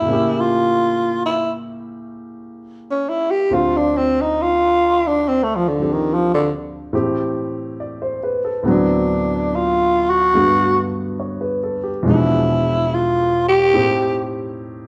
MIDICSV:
0, 0, Header, 1, 3, 480
1, 0, Start_track
1, 0, Tempo, 855920
1, 30, Time_signature, 4, 2, 24, 8
1, 8339, End_track
2, 0, Start_track
2, 0, Title_t, "Tenor saxophone"
2, 0, Program_c, 0, 66
2, 0, Note_on_c, 0, 64, 76
2, 224, Note_on_c, 0, 65, 91
2, 233, Note_off_c, 0, 64, 0
2, 686, Note_off_c, 0, 65, 0
2, 704, Note_on_c, 0, 64, 75
2, 854, Note_off_c, 0, 64, 0
2, 1630, Note_on_c, 0, 61, 76
2, 1734, Note_on_c, 0, 64, 88
2, 1743, Note_off_c, 0, 61, 0
2, 1854, Note_on_c, 0, 67, 86
2, 1862, Note_off_c, 0, 64, 0
2, 1986, Note_on_c, 0, 65, 75
2, 1994, Note_off_c, 0, 67, 0
2, 2112, Note_on_c, 0, 62, 76
2, 2121, Note_off_c, 0, 65, 0
2, 2227, Note_on_c, 0, 60, 74
2, 2235, Note_off_c, 0, 62, 0
2, 2360, Note_on_c, 0, 63, 78
2, 2369, Note_off_c, 0, 60, 0
2, 2475, Note_on_c, 0, 65, 98
2, 2484, Note_off_c, 0, 63, 0
2, 2843, Note_on_c, 0, 62, 87
2, 2851, Note_off_c, 0, 65, 0
2, 2962, Note_on_c, 0, 60, 74
2, 2971, Note_off_c, 0, 62, 0
2, 3046, Note_on_c, 0, 57, 68
2, 3054, Note_off_c, 0, 60, 0
2, 3116, Note_on_c, 0, 53, 73
2, 3124, Note_off_c, 0, 57, 0
2, 3188, Note_on_c, 0, 50, 71
2, 3197, Note_off_c, 0, 53, 0
2, 3321, Note_on_c, 0, 51, 66
2, 3330, Note_off_c, 0, 50, 0
2, 3441, Note_on_c, 0, 53, 76
2, 3449, Note_off_c, 0, 51, 0
2, 3552, Note_off_c, 0, 53, 0
2, 3556, Note_on_c, 0, 50, 69
2, 3655, Note_off_c, 0, 50, 0
2, 4881, Note_on_c, 0, 62, 74
2, 5356, Note_on_c, 0, 65, 86
2, 5364, Note_off_c, 0, 62, 0
2, 5663, Note_on_c, 0, 66, 108
2, 5671, Note_off_c, 0, 65, 0
2, 6128, Note_off_c, 0, 66, 0
2, 6781, Note_on_c, 0, 64, 79
2, 7257, Note_on_c, 0, 65, 85
2, 7266, Note_off_c, 0, 64, 0
2, 7560, Note_off_c, 0, 65, 0
2, 7563, Note_on_c, 0, 67, 102
2, 8015, Note_off_c, 0, 67, 0
2, 8339, End_track
3, 0, Start_track
3, 0, Title_t, "Grand piano"
3, 0, Program_c, 1, 0
3, 0, Control_c, 1, 64, 127
3, 9, Note_on_c, 1, 45, 55
3, 23, Note_on_c, 1, 49, 50
3, 37, Control_c, 1, 64, 0
3, 37, Note_on_c, 1, 58, 53
3, 53, Note_on_c, 1, 61, 51
3, 71, Note_on_c, 1, 67, 58
3, 139, Control_c, 1, 64, 127
3, 1946, Note_off_c, 1, 45, 0
3, 1953, Note_off_c, 1, 49, 0
3, 1960, Note_off_c, 1, 58, 0
3, 1963, Note_on_c, 1, 38, 53
3, 1964, Control_c, 1, 64, 0
3, 1966, Note_on_c, 1, 50, 49
3, 1968, Note_off_c, 1, 61, 0
3, 1971, Note_on_c, 1, 60, 53
3, 1973, Note_on_c, 1, 57, 53
3, 1977, Note_off_c, 1, 67, 0
3, 1977, Note_on_c, 1, 65, 62
3, 2066, Control_c, 1, 64, 127
3, 3247, Note_off_c, 1, 60, 0
3, 3250, Note_on_c, 1, 53, 43
3, 3255, Note_on_c, 1, 60, 37
3, 3265, Note_on_c, 1, 62, 39
3, 3266, Note_on_c, 1, 67, 47
3, 3878, Note_off_c, 1, 57, 0
3, 3882, Note_off_c, 1, 60, 0
3, 3885, Note_off_c, 1, 53, 0
3, 3886, Note_off_c, 1, 38, 0
3, 3886, Note_on_c, 1, 45, 55
3, 3886, Note_on_c, 1, 52, 51
3, 3887, Note_off_c, 1, 50, 0
3, 3887, Note_on_c, 1, 57, 50
3, 3889, Note_off_c, 1, 67, 0
3, 3889, Control_c, 1, 64, 0
3, 3890, Note_on_c, 1, 60, 56
3, 3892, Note_off_c, 1, 65, 0
3, 3893, Note_off_c, 1, 62, 0
3, 3897, Note_on_c, 1, 67, 66
3, 3999, Control_c, 1, 64, 127
3, 4375, Note_on_c, 1, 74, 46
3, 4497, Note_on_c, 1, 72, 47
3, 4592, Note_off_c, 1, 74, 0
3, 4618, Note_on_c, 1, 71, 49
3, 4694, Note_off_c, 1, 72, 0
3, 4736, Note_on_c, 1, 69, 51
3, 4757, Note_off_c, 1, 71, 0
3, 4837, Note_off_c, 1, 45, 0
3, 4839, Note_on_c, 1, 38, 61
3, 4841, Note_off_c, 1, 52, 0
3, 4841, Note_off_c, 1, 57, 0
3, 4843, Note_off_c, 1, 60, 0
3, 4845, Note_on_c, 1, 45, 55
3, 4846, Control_c, 1, 64, 0
3, 4847, Note_off_c, 1, 67, 0
3, 4852, Note_on_c, 1, 50, 51
3, 4854, Note_on_c, 1, 59, 53
3, 4862, Note_on_c, 1, 60, 54
3, 4867, Note_on_c, 1, 54, 67
3, 4895, Note_off_c, 1, 69, 0
3, 4952, Control_c, 1, 64, 127
3, 5791, Note_off_c, 1, 59, 0
3, 5793, Note_off_c, 1, 50, 0
3, 5794, Note_off_c, 1, 38, 0
3, 5796, Note_on_c, 1, 43, 55
3, 5797, Note_off_c, 1, 45, 0
3, 5799, Note_on_c, 1, 59, 48
3, 5802, Control_c, 1, 64, 0
3, 5802, Note_on_c, 1, 50, 49
3, 5802, Note_on_c, 1, 57, 49
3, 5806, Note_off_c, 1, 60, 0
3, 5807, Note_on_c, 1, 66, 58
3, 5808, Note_off_c, 1, 54, 0
3, 5911, Control_c, 1, 64, 127
3, 6279, Note_on_c, 1, 73, 47
3, 6398, Note_on_c, 1, 71, 50
3, 6500, Note_off_c, 1, 73, 0
3, 6525, Note_on_c, 1, 69, 49
3, 6601, Note_off_c, 1, 71, 0
3, 6637, Note_on_c, 1, 67, 53
3, 6667, Note_off_c, 1, 69, 0
3, 6746, Note_on_c, 1, 40, 64
3, 6751, Note_on_c, 1, 47, 56
3, 6753, Note_off_c, 1, 43, 0
3, 6755, Note_off_c, 1, 59, 0
3, 6756, Note_off_c, 1, 50, 0
3, 6756, Note_off_c, 1, 57, 0
3, 6758, Note_off_c, 1, 66, 0
3, 6758, Note_on_c, 1, 56, 61
3, 6760, Control_c, 1, 64, 0
3, 6763, Note_on_c, 1, 62, 56
3, 6770, Note_on_c, 1, 53, 68
3, 6802, Note_off_c, 1, 67, 0
3, 6860, Control_c, 1, 64, 127
3, 7702, Note_on_c, 1, 45, 61
3, 7706, Note_on_c, 1, 57, 58
3, 7707, Note_on_c, 1, 63, 55
3, 7708, Note_off_c, 1, 40, 0
3, 7710, Note_off_c, 1, 47, 0
3, 7710, Note_on_c, 1, 60, 57
3, 7713, Note_on_c, 1, 67, 70
3, 7714, Note_off_c, 1, 56, 0
3, 7716, Note_off_c, 1, 62, 0
3, 7719, Control_c, 1, 64, 0
3, 7720, Note_off_c, 1, 53, 0
3, 7826, Control_c, 1, 64, 127
3, 8339, Note_off_c, 1, 45, 0
3, 8339, Note_off_c, 1, 57, 0
3, 8339, Note_off_c, 1, 60, 0
3, 8339, Note_off_c, 1, 63, 0
3, 8339, Note_off_c, 1, 67, 0
3, 8339, End_track
0, 0, End_of_file